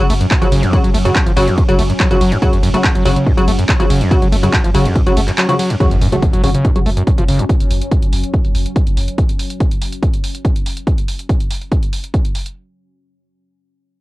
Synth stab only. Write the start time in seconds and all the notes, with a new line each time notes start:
0.42 C#3 F#3 F#4
0.73 C#3 F#3 F#4
1.05 C#3 F#3 F#4
1.37 C#3 F#3 F#4
1.69 C#3 F#3 F#4
2.11 C#3 F#3 F#4
2.42 C#3 F#3 F#4
2.74 C#3 F#3 F#4
3.05 C#3 F#3 F#4
3.37 C#3 F#3 F#4
3.80 C#3 F#3 F#4
4.11 C#3 F#3 F#4
4.43 C#3 F#3 F#4
4.75 C#3 F#3 F#4
5.06 C#3 F#3 F#4
5.49 C#3 F#3 F#4
5.80 C#3 F#3 F#4
6.12 C#3 F#3 F#4
6.44 C#3 F#3 F#4
6.76 C#3 F#3 F#4
7.18 C#3 F#3 F#4